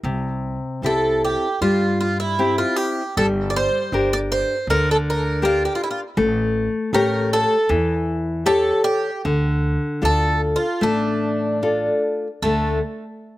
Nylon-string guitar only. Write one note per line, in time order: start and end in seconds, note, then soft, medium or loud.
0.04 0.81 C3 medium
0.83 1.46 C4 soft
0.83 1.46 E4 soft
0.83 1.46 G4 soft
1.62 2.37 G3 medium
2.39 3.01 C4 soft
2.39 3.01 E4 soft
2.39 3.01 G4 medium
3.18 3.91 G3 medium
3.93 4.54 D4 soft
3.93 4.54 G4 soft
3.93 4.54 A#4 medium
4.70 5.42 D3 medium
5.42 6.03 D4 medium
5.42 6.03 G4 soft
5.42 6.03 A#4 medium
6.17 6.92 A3 medium
6.93 7.55 A3 soft
6.93 7.55 G4 medium
6.93 7.55 C#5 medium
7.69 8.44 E3 medium
8.46 9.08 G4 medium
8.46 9.08 A4 medium
8.46 9.09 C#5 medium
9.25 10.00 D3 medium
10.02 10.65 D4 soft
10.02 10.65 F4 soft
10.02 10.66 A4 medium
10.81 11.60 A3 medium
11.63 12.27 D4 soft
11.63 12.27 F4 soft
11.63 12.27 A4 soft
12.43 12.79 D3 medium
12.43 12.80 A3 medium